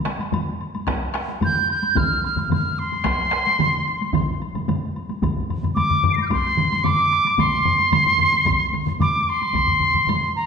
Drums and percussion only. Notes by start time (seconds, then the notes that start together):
0.06 taiko rim, taiko high, high woodblock
0.19 taiko high, high woodblock
0.32 taiko low-mid, taiko mid, taiko high, high woodblock
0.61 high woodblock
0.75 taiko high, high woodblock
0.87 taiko rim, taiko, taiko high, high woodblock
1.14 taiko rim, high woodblock
1.29 taiko high, high woodblock
1.41 taiko low-mid, taiko mid, taiko high, high woodblock
1.70 high woodblock
1.83 taiko high, high woodblock
1.96 taiko, taiko low-mid, taiko mid, taiko high, high woodblock
2.24 high woodblock
2.36 taiko low-mid, taiko mid, taiko high, high woodblock
2.50 taiko low-mid, taiko mid, taiko high, high woodblock
2.79 high woodblock
2.92 taiko high, high woodblock
3.04 taiko rim, taiko, taiko high, high woodblock
3.32 taiko rim, high woodblock
3.47 taiko high, high woodblock
3.59 taiko low-mid, taiko mid, taiko high, high woodblock
3.88 high woodblock
4.01 taiko high, high woodblock
4.13 taiko, taiko low-mid, taiko mid, taiko high, high woodblock
4.42 high woodblock
4.55 taiko low-mid, taiko mid, taiko high, high woodblock
4.68 taiko low-mid, taiko mid, taiko high, high woodblock
4.96 high woodblock
5.09 taiko high, high woodblock
5.22 taiko, taiko low-mid, taiko mid, taiko high, high woodblock
5.37 taiko low-mid, taiko mid
5.50 taiko low-mid, taiko mid, high woodblock
5.63 taiko low-mid, taiko mid, taiko high, high woodblock
5.77 taiko low-mid, taiko mid, taiko high, high woodblock
5.90 taiko low-mid, taiko mid
6.04 taiko low-mid, taiko mid, high woodblock
6.18 taiko high, high woodblock
6.30 taiko, taiko high, high woodblock
6.57 taiko low-mid, taiko mid, high woodblock
6.72 taiko high, high woodblock
6.84 taiko low-mid, taiko mid, taiko high, high woodblock
7.13 high woodblock
7.25 taiko high, high woodblock
7.38 taiko, taiko low-mid, taiko mid, taiko high, high woodblock
7.65 taiko low-mid, taiko mid, high woodblock
7.78 taiko high, high woodblock
7.92 taiko low-mid, taiko mid, taiko high, high woodblock
8.06 taiko low-mid, taiko mid
8.18 taiko low-mid, taiko mid, high woodblock
8.33 taiko high, high woodblock
8.45 taiko, taiko low-mid, taiko mid, taiko high, high woodblock
8.73 taiko low-mid, taiko mid, taiko high, high woodblock
8.86 taiko low-mid, taiko mid, taiko high, high woodblock
9.00 taiko low-mid, taiko mid, taiko high, high woodblock
9.29 high woodblock
9.42 taiko high, high woodblock
9.53 taiko, taiko low-mid, taiko mid, taiko high, high woodblock
9.67 taiko low-mid, taiko mid
9.80 taiko low-mid, taiko mid, high woodblock
9.94 taiko low-mid, taiko mid, taiko high, high woodblock
10.07 taiko low-mid, taiko mid, taiko high, high woodblock
10.37 high woodblock